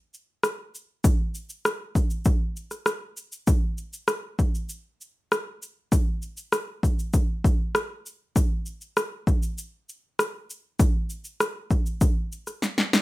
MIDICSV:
0, 0, Header, 1, 2, 480
1, 0, Start_track
1, 0, Tempo, 609756
1, 820, Time_signature, 4, 2, 24, 8
1, 10248, End_track
2, 0, Start_track
2, 0, Title_t, "Drums"
2, 110, Note_on_c, 9, 82, 36
2, 189, Note_off_c, 9, 82, 0
2, 342, Note_on_c, 9, 37, 83
2, 346, Note_on_c, 9, 82, 55
2, 421, Note_off_c, 9, 37, 0
2, 424, Note_off_c, 9, 82, 0
2, 589, Note_on_c, 9, 82, 46
2, 668, Note_off_c, 9, 82, 0
2, 821, Note_on_c, 9, 36, 98
2, 821, Note_on_c, 9, 82, 72
2, 899, Note_off_c, 9, 36, 0
2, 900, Note_off_c, 9, 82, 0
2, 1060, Note_on_c, 9, 82, 43
2, 1139, Note_off_c, 9, 82, 0
2, 1178, Note_on_c, 9, 82, 44
2, 1256, Note_off_c, 9, 82, 0
2, 1301, Note_on_c, 9, 37, 100
2, 1303, Note_on_c, 9, 82, 62
2, 1380, Note_off_c, 9, 37, 0
2, 1381, Note_off_c, 9, 82, 0
2, 1537, Note_on_c, 9, 36, 69
2, 1541, Note_on_c, 9, 82, 41
2, 1616, Note_off_c, 9, 36, 0
2, 1619, Note_off_c, 9, 82, 0
2, 1655, Note_on_c, 9, 82, 40
2, 1734, Note_off_c, 9, 82, 0
2, 1771, Note_on_c, 9, 82, 58
2, 1776, Note_on_c, 9, 36, 84
2, 1850, Note_off_c, 9, 82, 0
2, 1855, Note_off_c, 9, 36, 0
2, 2019, Note_on_c, 9, 82, 38
2, 2098, Note_off_c, 9, 82, 0
2, 2133, Note_on_c, 9, 82, 44
2, 2134, Note_on_c, 9, 37, 30
2, 2212, Note_off_c, 9, 82, 0
2, 2213, Note_off_c, 9, 37, 0
2, 2251, Note_on_c, 9, 37, 86
2, 2254, Note_on_c, 9, 82, 54
2, 2329, Note_off_c, 9, 37, 0
2, 2333, Note_off_c, 9, 82, 0
2, 2495, Note_on_c, 9, 82, 51
2, 2574, Note_off_c, 9, 82, 0
2, 2615, Note_on_c, 9, 82, 51
2, 2694, Note_off_c, 9, 82, 0
2, 2733, Note_on_c, 9, 82, 67
2, 2735, Note_on_c, 9, 36, 96
2, 2812, Note_off_c, 9, 82, 0
2, 2813, Note_off_c, 9, 36, 0
2, 2974, Note_on_c, 9, 82, 37
2, 3053, Note_off_c, 9, 82, 0
2, 3095, Note_on_c, 9, 82, 45
2, 3174, Note_off_c, 9, 82, 0
2, 3210, Note_on_c, 9, 37, 96
2, 3211, Note_on_c, 9, 82, 70
2, 3288, Note_off_c, 9, 37, 0
2, 3290, Note_off_c, 9, 82, 0
2, 3454, Note_on_c, 9, 36, 67
2, 3457, Note_on_c, 9, 82, 40
2, 3533, Note_off_c, 9, 36, 0
2, 3536, Note_off_c, 9, 82, 0
2, 3581, Note_on_c, 9, 82, 38
2, 3659, Note_off_c, 9, 82, 0
2, 3693, Note_on_c, 9, 82, 60
2, 3772, Note_off_c, 9, 82, 0
2, 3944, Note_on_c, 9, 82, 38
2, 4023, Note_off_c, 9, 82, 0
2, 4186, Note_on_c, 9, 37, 99
2, 4190, Note_on_c, 9, 82, 56
2, 4265, Note_off_c, 9, 37, 0
2, 4269, Note_off_c, 9, 82, 0
2, 4427, Note_on_c, 9, 82, 48
2, 4506, Note_off_c, 9, 82, 0
2, 4660, Note_on_c, 9, 36, 90
2, 4663, Note_on_c, 9, 82, 72
2, 4739, Note_off_c, 9, 36, 0
2, 4741, Note_off_c, 9, 82, 0
2, 4898, Note_on_c, 9, 82, 41
2, 4977, Note_off_c, 9, 82, 0
2, 5015, Note_on_c, 9, 82, 40
2, 5094, Note_off_c, 9, 82, 0
2, 5136, Note_on_c, 9, 37, 95
2, 5138, Note_on_c, 9, 82, 65
2, 5215, Note_off_c, 9, 37, 0
2, 5217, Note_off_c, 9, 82, 0
2, 5378, Note_on_c, 9, 36, 65
2, 5385, Note_on_c, 9, 82, 41
2, 5457, Note_off_c, 9, 36, 0
2, 5464, Note_off_c, 9, 82, 0
2, 5504, Note_on_c, 9, 82, 39
2, 5583, Note_off_c, 9, 82, 0
2, 5616, Note_on_c, 9, 82, 68
2, 5618, Note_on_c, 9, 36, 73
2, 5695, Note_off_c, 9, 82, 0
2, 5697, Note_off_c, 9, 36, 0
2, 5860, Note_on_c, 9, 36, 80
2, 5865, Note_on_c, 9, 82, 36
2, 5939, Note_off_c, 9, 36, 0
2, 5944, Note_off_c, 9, 82, 0
2, 6100, Note_on_c, 9, 37, 106
2, 6103, Note_on_c, 9, 82, 50
2, 6178, Note_off_c, 9, 37, 0
2, 6182, Note_off_c, 9, 82, 0
2, 6345, Note_on_c, 9, 82, 45
2, 6424, Note_off_c, 9, 82, 0
2, 6579, Note_on_c, 9, 36, 90
2, 6583, Note_on_c, 9, 82, 78
2, 6658, Note_off_c, 9, 36, 0
2, 6662, Note_off_c, 9, 82, 0
2, 6816, Note_on_c, 9, 82, 42
2, 6895, Note_off_c, 9, 82, 0
2, 6937, Note_on_c, 9, 82, 40
2, 7016, Note_off_c, 9, 82, 0
2, 7060, Note_on_c, 9, 37, 94
2, 7062, Note_on_c, 9, 82, 63
2, 7139, Note_off_c, 9, 37, 0
2, 7140, Note_off_c, 9, 82, 0
2, 7298, Note_on_c, 9, 36, 75
2, 7302, Note_on_c, 9, 82, 41
2, 7377, Note_off_c, 9, 36, 0
2, 7381, Note_off_c, 9, 82, 0
2, 7420, Note_on_c, 9, 82, 44
2, 7499, Note_off_c, 9, 82, 0
2, 7542, Note_on_c, 9, 82, 67
2, 7620, Note_off_c, 9, 82, 0
2, 7787, Note_on_c, 9, 82, 42
2, 7865, Note_off_c, 9, 82, 0
2, 8023, Note_on_c, 9, 37, 86
2, 8027, Note_on_c, 9, 82, 59
2, 8102, Note_off_c, 9, 37, 0
2, 8106, Note_off_c, 9, 82, 0
2, 8267, Note_on_c, 9, 82, 49
2, 8345, Note_off_c, 9, 82, 0
2, 8498, Note_on_c, 9, 36, 98
2, 8499, Note_on_c, 9, 82, 70
2, 8577, Note_off_c, 9, 36, 0
2, 8577, Note_off_c, 9, 82, 0
2, 8736, Note_on_c, 9, 82, 43
2, 8815, Note_off_c, 9, 82, 0
2, 8852, Note_on_c, 9, 82, 43
2, 8931, Note_off_c, 9, 82, 0
2, 8977, Note_on_c, 9, 37, 98
2, 8979, Note_on_c, 9, 82, 69
2, 9056, Note_off_c, 9, 37, 0
2, 9058, Note_off_c, 9, 82, 0
2, 9215, Note_on_c, 9, 36, 67
2, 9217, Note_on_c, 9, 82, 42
2, 9293, Note_off_c, 9, 36, 0
2, 9295, Note_off_c, 9, 82, 0
2, 9337, Note_on_c, 9, 82, 39
2, 9416, Note_off_c, 9, 82, 0
2, 9454, Note_on_c, 9, 82, 67
2, 9456, Note_on_c, 9, 36, 81
2, 9533, Note_off_c, 9, 82, 0
2, 9535, Note_off_c, 9, 36, 0
2, 9701, Note_on_c, 9, 82, 42
2, 9779, Note_off_c, 9, 82, 0
2, 9817, Note_on_c, 9, 82, 50
2, 9818, Note_on_c, 9, 37, 31
2, 9896, Note_off_c, 9, 82, 0
2, 9897, Note_off_c, 9, 37, 0
2, 9937, Note_on_c, 9, 38, 41
2, 9942, Note_on_c, 9, 82, 55
2, 10015, Note_off_c, 9, 38, 0
2, 10021, Note_off_c, 9, 82, 0
2, 10060, Note_on_c, 9, 38, 54
2, 10138, Note_off_c, 9, 38, 0
2, 10181, Note_on_c, 9, 38, 80
2, 10185, Note_on_c, 9, 82, 49
2, 10248, Note_off_c, 9, 38, 0
2, 10248, Note_off_c, 9, 82, 0
2, 10248, End_track
0, 0, End_of_file